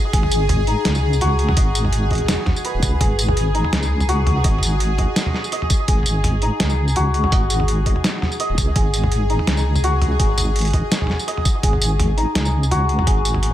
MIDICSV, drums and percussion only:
0, 0, Header, 1, 2, 480
1, 0, Start_track
1, 0, Key_signature, 5, "minor"
1, 0, Tempo, 359281
1, 180, Time_signature, 4, 2, 24, 8
1, 18084, End_track
2, 0, Start_track
2, 0, Title_t, "Drums"
2, 179, Note_on_c, 9, 36, 114
2, 179, Note_on_c, 9, 42, 78
2, 310, Note_on_c, 9, 45, 55
2, 313, Note_off_c, 9, 36, 0
2, 313, Note_off_c, 9, 42, 0
2, 421, Note_on_c, 9, 42, 37
2, 421, Note_on_c, 9, 54, 70
2, 443, Note_off_c, 9, 45, 0
2, 554, Note_off_c, 9, 42, 0
2, 554, Note_off_c, 9, 54, 0
2, 657, Note_on_c, 9, 42, 65
2, 657, Note_on_c, 9, 45, 83
2, 791, Note_off_c, 9, 42, 0
2, 791, Note_off_c, 9, 45, 0
2, 898, Note_on_c, 9, 42, 37
2, 1031, Note_off_c, 9, 42, 0
2, 1137, Note_on_c, 9, 38, 113
2, 1137, Note_on_c, 9, 42, 78
2, 1137, Note_on_c, 9, 45, 56
2, 1267, Note_on_c, 9, 54, 40
2, 1270, Note_off_c, 9, 38, 0
2, 1270, Note_off_c, 9, 42, 0
2, 1270, Note_off_c, 9, 45, 0
2, 1401, Note_off_c, 9, 54, 0
2, 1510, Note_on_c, 9, 54, 41
2, 1619, Note_on_c, 9, 42, 67
2, 1619, Note_on_c, 9, 45, 55
2, 1644, Note_off_c, 9, 54, 0
2, 1753, Note_off_c, 9, 42, 0
2, 1753, Note_off_c, 9, 45, 0
2, 1856, Note_on_c, 9, 42, 36
2, 1985, Note_on_c, 9, 45, 81
2, 1989, Note_off_c, 9, 42, 0
2, 2094, Note_on_c, 9, 42, 80
2, 2097, Note_on_c, 9, 36, 119
2, 2118, Note_off_c, 9, 45, 0
2, 2228, Note_off_c, 9, 42, 0
2, 2230, Note_off_c, 9, 36, 0
2, 2340, Note_on_c, 9, 42, 38
2, 2340, Note_on_c, 9, 54, 70
2, 2467, Note_on_c, 9, 45, 56
2, 2473, Note_off_c, 9, 42, 0
2, 2473, Note_off_c, 9, 54, 0
2, 2572, Note_on_c, 9, 42, 69
2, 2601, Note_off_c, 9, 45, 0
2, 2706, Note_off_c, 9, 42, 0
2, 2812, Note_on_c, 9, 42, 17
2, 2816, Note_on_c, 9, 36, 59
2, 2845, Note_off_c, 9, 42, 0
2, 2845, Note_on_c, 9, 42, 23
2, 2876, Note_off_c, 9, 42, 0
2, 2876, Note_on_c, 9, 42, 28
2, 2910, Note_off_c, 9, 42, 0
2, 2910, Note_on_c, 9, 42, 33
2, 2945, Note_on_c, 9, 45, 25
2, 2950, Note_off_c, 9, 36, 0
2, 2968, Note_off_c, 9, 45, 0
2, 2968, Note_on_c, 9, 45, 28
2, 3000, Note_off_c, 9, 45, 0
2, 3000, Note_on_c, 9, 45, 31
2, 3024, Note_off_c, 9, 45, 0
2, 3024, Note_on_c, 9, 45, 36
2, 3043, Note_off_c, 9, 42, 0
2, 3052, Note_off_c, 9, 45, 0
2, 3052, Note_on_c, 9, 38, 116
2, 3052, Note_on_c, 9, 42, 82
2, 3052, Note_on_c, 9, 45, 38
2, 3052, Note_on_c, 9, 54, 69
2, 3084, Note_off_c, 9, 45, 0
2, 3084, Note_on_c, 9, 45, 43
2, 3118, Note_off_c, 9, 45, 0
2, 3118, Note_on_c, 9, 45, 47
2, 3148, Note_off_c, 9, 45, 0
2, 3148, Note_on_c, 9, 45, 49
2, 3185, Note_off_c, 9, 38, 0
2, 3185, Note_off_c, 9, 42, 0
2, 3185, Note_off_c, 9, 54, 0
2, 3281, Note_off_c, 9, 45, 0
2, 3290, Note_on_c, 9, 38, 36
2, 3290, Note_on_c, 9, 45, 84
2, 3297, Note_on_c, 9, 36, 59
2, 3424, Note_off_c, 9, 38, 0
2, 3424, Note_off_c, 9, 45, 0
2, 3425, Note_on_c, 9, 54, 40
2, 3430, Note_off_c, 9, 36, 0
2, 3536, Note_on_c, 9, 42, 68
2, 3558, Note_off_c, 9, 54, 0
2, 3669, Note_off_c, 9, 42, 0
2, 3775, Note_on_c, 9, 42, 37
2, 3775, Note_on_c, 9, 45, 56
2, 3775, Note_on_c, 9, 54, 68
2, 3777, Note_on_c, 9, 36, 101
2, 3909, Note_off_c, 9, 42, 0
2, 3909, Note_off_c, 9, 45, 0
2, 3909, Note_off_c, 9, 54, 0
2, 3910, Note_off_c, 9, 36, 0
2, 4017, Note_on_c, 9, 36, 119
2, 4019, Note_on_c, 9, 42, 81
2, 4019, Note_on_c, 9, 45, 56
2, 4151, Note_off_c, 9, 36, 0
2, 4153, Note_off_c, 9, 42, 0
2, 4153, Note_off_c, 9, 45, 0
2, 4258, Note_on_c, 9, 42, 38
2, 4258, Note_on_c, 9, 54, 68
2, 4389, Note_on_c, 9, 45, 84
2, 4391, Note_off_c, 9, 42, 0
2, 4391, Note_off_c, 9, 54, 0
2, 4501, Note_on_c, 9, 42, 69
2, 4523, Note_off_c, 9, 45, 0
2, 4635, Note_off_c, 9, 42, 0
2, 4740, Note_on_c, 9, 42, 40
2, 4869, Note_on_c, 9, 45, 56
2, 4873, Note_off_c, 9, 42, 0
2, 4980, Note_on_c, 9, 38, 120
2, 4980, Note_on_c, 9, 42, 83
2, 5003, Note_off_c, 9, 45, 0
2, 5112, Note_on_c, 9, 54, 38
2, 5114, Note_off_c, 9, 38, 0
2, 5114, Note_off_c, 9, 42, 0
2, 5245, Note_off_c, 9, 54, 0
2, 5349, Note_on_c, 9, 45, 57
2, 5349, Note_on_c, 9, 54, 37
2, 5462, Note_on_c, 9, 42, 70
2, 5483, Note_off_c, 9, 45, 0
2, 5483, Note_off_c, 9, 54, 0
2, 5596, Note_off_c, 9, 42, 0
2, 5700, Note_on_c, 9, 42, 40
2, 5700, Note_on_c, 9, 45, 81
2, 5833, Note_off_c, 9, 42, 0
2, 5833, Note_off_c, 9, 45, 0
2, 5935, Note_on_c, 9, 42, 84
2, 5938, Note_on_c, 9, 36, 126
2, 6069, Note_off_c, 9, 42, 0
2, 6072, Note_off_c, 9, 36, 0
2, 6126, Note_on_c, 9, 45, 54
2, 6182, Note_on_c, 9, 42, 40
2, 6182, Note_on_c, 9, 54, 65
2, 6259, Note_off_c, 9, 45, 0
2, 6316, Note_off_c, 9, 42, 0
2, 6316, Note_off_c, 9, 54, 0
2, 6418, Note_on_c, 9, 42, 69
2, 6551, Note_off_c, 9, 42, 0
2, 6658, Note_on_c, 9, 36, 66
2, 6661, Note_on_c, 9, 42, 40
2, 6661, Note_on_c, 9, 45, 56
2, 6792, Note_off_c, 9, 36, 0
2, 6795, Note_off_c, 9, 42, 0
2, 6795, Note_off_c, 9, 45, 0
2, 6897, Note_on_c, 9, 38, 123
2, 6897, Note_on_c, 9, 42, 85
2, 6897, Note_on_c, 9, 54, 66
2, 7028, Note_on_c, 9, 45, 83
2, 7030, Note_off_c, 9, 38, 0
2, 7030, Note_off_c, 9, 42, 0
2, 7030, Note_off_c, 9, 54, 0
2, 7137, Note_on_c, 9, 38, 39
2, 7162, Note_off_c, 9, 45, 0
2, 7270, Note_on_c, 9, 54, 37
2, 7271, Note_off_c, 9, 38, 0
2, 7376, Note_on_c, 9, 42, 70
2, 7403, Note_off_c, 9, 54, 0
2, 7508, Note_on_c, 9, 45, 57
2, 7510, Note_off_c, 9, 42, 0
2, 7614, Note_on_c, 9, 42, 39
2, 7614, Note_on_c, 9, 54, 63
2, 7619, Note_on_c, 9, 36, 110
2, 7641, Note_off_c, 9, 45, 0
2, 7748, Note_off_c, 9, 42, 0
2, 7748, Note_off_c, 9, 54, 0
2, 7753, Note_off_c, 9, 36, 0
2, 7857, Note_on_c, 9, 42, 82
2, 7859, Note_on_c, 9, 36, 127
2, 7989, Note_on_c, 9, 45, 24
2, 7990, Note_off_c, 9, 42, 0
2, 7993, Note_off_c, 9, 36, 0
2, 8014, Note_off_c, 9, 45, 0
2, 8014, Note_on_c, 9, 45, 32
2, 8057, Note_off_c, 9, 45, 0
2, 8057, Note_on_c, 9, 45, 42
2, 8094, Note_on_c, 9, 42, 38
2, 8094, Note_on_c, 9, 54, 65
2, 8190, Note_off_c, 9, 45, 0
2, 8227, Note_off_c, 9, 42, 0
2, 8227, Note_off_c, 9, 54, 0
2, 8336, Note_on_c, 9, 42, 67
2, 8336, Note_on_c, 9, 45, 76
2, 8470, Note_off_c, 9, 42, 0
2, 8470, Note_off_c, 9, 45, 0
2, 8574, Note_on_c, 9, 42, 40
2, 8708, Note_off_c, 9, 42, 0
2, 8817, Note_on_c, 9, 38, 125
2, 8817, Note_on_c, 9, 42, 83
2, 8817, Note_on_c, 9, 45, 53
2, 8946, Note_on_c, 9, 54, 36
2, 8951, Note_off_c, 9, 38, 0
2, 8951, Note_off_c, 9, 42, 0
2, 8951, Note_off_c, 9, 45, 0
2, 9079, Note_off_c, 9, 54, 0
2, 9188, Note_on_c, 9, 54, 36
2, 9297, Note_on_c, 9, 42, 69
2, 9297, Note_on_c, 9, 45, 52
2, 9322, Note_off_c, 9, 54, 0
2, 9431, Note_off_c, 9, 42, 0
2, 9431, Note_off_c, 9, 45, 0
2, 9541, Note_on_c, 9, 42, 38
2, 9670, Note_on_c, 9, 45, 78
2, 9675, Note_off_c, 9, 42, 0
2, 9781, Note_on_c, 9, 42, 80
2, 9782, Note_on_c, 9, 36, 125
2, 9804, Note_off_c, 9, 45, 0
2, 9914, Note_off_c, 9, 42, 0
2, 9916, Note_off_c, 9, 36, 0
2, 10021, Note_on_c, 9, 42, 37
2, 10021, Note_on_c, 9, 54, 64
2, 10151, Note_on_c, 9, 45, 51
2, 10154, Note_off_c, 9, 42, 0
2, 10154, Note_off_c, 9, 54, 0
2, 10262, Note_on_c, 9, 42, 67
2, 10285, Note_off_c, 9, 45, 0
2, 10396, Note_off_c, 9, 42, 0
2, 10502, Note_on_c, 9, 36, 65
2, 10503, Note_on_c, 9, 42, 38
2, 10632, Note_on_c, 9, 45, 51
2, 10636, Note_off_c, 9, 36, 0
2, 10636, Note_off_c, 9, 42, 0
2, 10744, Note_on_c, 9, 38, 127
2, 10744, Note_on_c, 9, 42, 79
2, 10744, Note_on_c, 9, 54, 66
2, 10766, Note_off_c, 9, 45, 0
2, 10878, Note_off_c, 9, 38, 0
2, 10878, Note_off_c, 9, 42, 0
2, 10878, Note_off_c, 9, 54, 0
2, 10985, Note_on_c, 9, 38, 39
2, 10985, Note_on_c, 9, 45, 76
2, 11111, Note_on_c, 9, 54, 36
2, 11119, Note_off_c, 9, 38, 0
2, 11119, Note_off_c, 9, 45, 0
2, 11219, Note_on_c, 9, 42, 66
2, 11245, Note_off_c, 9, 54, 0
2, 11353, Note_off_c, 9, 42, 0
2, 11461, Note_on_c, 9, 42, 37
2, 11461, Note_on_c, 9, 45, 50
2, 11461, Note_on_c, 9, 54, 63
2, 11462, Note_on_c, 9, 36, 108
2, 11595, Note_off_c, 9, 36, 0
2, 11595, Note_off_c, 9, 42, 0
2, 11595, Note_off_c, 9, 45, 0
2, 11595, Note_off_c, 9, 54, 0
2, 11699, Note_on_c, 9, 42, 75
2, 11699, Note_on_c, 9, 45, 53
2, 11701, Note_on_c, 9, 36, 121
2, 11833, Note_off_c, 9, 42, 0
2, 11833, Note_off_c, 9, 45, 0
2, 11835, Note_off_c, 9, 36, 0
2, 11938, Note_on_c, 9, 42, 36
2, 11938, Note_on_c, 9, 54, 69
2, 12071, Note_on_c, 9, 45, 77
2, 12072, Note_off_c, 9, 42, 0
2, 12072, Note_off_c, 9, 54, 0
2, 12179, Note_on_c, 9, 42, 63
2, 12205, Note_off_c, 9, 45, 0
2, 12313, Note_off_c, 9, 42, 0
2, 12422, Note_on_c, 9, 42, 37
2, 12549, Note_on_c, 9, 45, 53
2, 12556, Note_off_c, 9, 42, 0
2, 12657, Note_on_c, 9, 38, 121
2, 12657, Note_on_c, 9, 42, 77
2, 12682, Note_off_c, 9, 45, 0
2, 12788, Note_on_c, 9, 54, 38
2, 12791, Note_off_c, 9, 38, 0
2, 12791, Note_off_c, 9, 42, 0
2, 12922, Note_off_c, 9, 54, 0
2, 13032, Note_on_c, 9, 45, 53
2, 13032, Note_on_c, 9, 54, 38
2, 13143, Note_on_c, 9, 42, 63
2, 13166, Note_off_c, 9, 45, 0
2, 13166, Note_off_c, 9, 54, 0
2, 13277, Note_off_c, 9, 42, 0
2, 13381, Note_on_c, 9, 42, 35
2, 13381, Note_on_c, 9, 45, 76
2, 13515, Note_off_c, 9, 42, 0
2, 13515, Note_off_c, 9, 45, 0
2, 13622, Note_on_c, 9, 42, 75
2, 13623, Note_on_c, 9, 36, 116
2, 13755, Note_off_c, 9, 42, 0
2, 13756, Note_off_c, 9, 36, 0
2, 13862, Note_on_c, 9, 42, 37
2, 13862, Note_on_c, 9, 45, 53
2, 13862, Note_on_c, 9, 54, 70
2, 13996, Note_off_c, 9, 42, 0
2, 13996, Note_off_c, 9, 45, 0
2, 13996, Note_off_c, 9, 54, 0
2, 14105, Note_on_c, 9, 42, 61
2, 14146, Note_off_c, 9, 42, 0
2, 14146, Note_on_c, 9, 42, 49
2, 14179, Note_off_c, 9, 42, 0
2, 14179, Note_on_c, 9, 42, 41
2, 14230, Note_off_c, 9, 42, 0
2, 14230, Note_on_c, 9, 42, 34
2, 14261, Note_off_c, 9, 42, 0
2, 14261, Note_on_c, 9, 42, 28
2, 14303, Note_off_c, 9, 42, 0
2, 14303, Note_on_c, 9, 42, 22
2, 14342, Note_off_c, 9, 42, 0
2, 14342, Note_on_c, 9, 42, 36
2, 14342, Note_on_c, 9, 45, 54
2, 14343, Note_on_c, 9, 36, 60
2, 14475, Note_off_c, 9, 42, 0
2, 14475, Note_off_c, 9, 45, 0
2, 14477, Note_off_c, 9, 36, 0
2, 14583, Note_on_c, 9, 38, 117
2, 14583, Note_on_c, 9, 42, 75
2, 14583, Note_on_c, 9, 54, 70
2, 14714, Note_on_c, 9, 45, 76
2, 14717, Note_off_c, 9, 38, 0
2, 14717, Note_off_c, 9, 42, 0
2, 14717, Note_off_c, 9, 54, 0
2, 14788, Note_off_c, 9, 45, 0
2, 14788, Note_on_c, 9, 45, 62
2, 14825, Note_on_c, 9, 38, 36
2, 14870, Note_off_c, 9, 45, 0
2, 14870, Note_on_c, 9, 45, 51
2, 14955, Note_on_c, 9, 54, 39
2, 14958, Note_off_c, 9, 38, 0
2, 15003, Note_off_c, 9, 45, 0
2, 15069, Note_on_c, 9, 42, 64
2, 15089, Note_off_c, 9, 54, 0
2, 15196, Note_on_c, 9, 45, 54
2, 15202, Note_off_c, 9, 42, 0
2, 15301, Note_on_c, 9, 42, 35
2, 15301, Note_on_c, 9, 54, 70
2, 15303, Note_on_c, 9, 36, 99
2, 15330, Note_off_c, 9, 45, 0
2, 15434, Note_off_c, 9, 42, 0
2, 15434, Note_off_c, 9, 54, 0
2, 15437, Note_off_c, 9, 36, 0
2, 15543, Note_on_c, 9, 36, 116
2, 15543, Note_on_c, 9, 42, 78
2, 15672, Note_on_c, 9, 45, 55
2, 15676, Note_off_c, 9, 36, 0
2, 15677, Note_off_c, 9, 42, 0
2, 15785, Note_on_c, 9, 42, 37
2, 15785, Note_on_c, 9, 54, 74
2, 15806, Note_off_c, 9, 45, 0
2, 15919, Note_off_c, 9, 42, 0
2, 15919, Note_off_c, 9, 54, 0
2, 16025, Note_on_c, 9, 42, 64
2, 16025, Note_on_c, 9, 45, 84
2, 16159, Note_off_c, 9, 42, 0
2, 16159, Note_off_c, 9, 45, 0
2, 16268, Note_on_c, 9, 42, 38
2, 16402, Note_off_c, 9, 42, 0
2, 16505, Note_on_c, 9, 38, 116
2, 16505, Note_on_c, 9, 42, 78
2, 16505, Note_on_c, 9, 45, 53
2, 16637, Note_on_c, 9, 54, 40
2, 16638, Note_off_c, 9, 38, 0
2, 16638, Note_off_c, 9, 42, 0
2, 16638, Note_off_c, 9, 45, 0
2, 16770, Note_off_c, 9, 54, 0
2, 16876, Note_on_c, 9, 54, 41
2, 16987, Note_on_c, 9, 42, 65
2, 16987, Note_on_c, 9, 45, 54
2, 17010, Note_off_c, 9, 54, 0
2, 17120, Note_off_c, 9, 42, 0
2, 17120, Note_off_c, 9, 45, 0
2, 17223, Note_on_c, 9, 42, 35
2, 17351, Note_on_c, 9, 45, 84
2, 17356, Note_off_c, 9, 42, 0
2, 17462, Note_on_c, 9, 42, 82
2, 17463, Note_on_c, 9, 36, 116
2, 17485, Note_off_c, 9, 45, 0
2, 17595, Note_off_c, 9, 42, 0
2, 17597, Note_off_c, 9, 36, 0
2, 17704, Note_on_c, 9, 42, 37
2, 17704, Note_on_c, 9, 54, 69
2, 17828, Note_on_c, 9, 45, 56
2, 17837, Note_off_c, 9, 42, 0
2, 17837, Note_off_c, 9, 54, 0
2, 17939, Note_on_c, 9, 42, 67
2, 17962, Note_off_c, 9, 45, 0
2, 18072, Note_off_c, 9, 42, 0
2, 18084, End_track
0, 0, End_of_file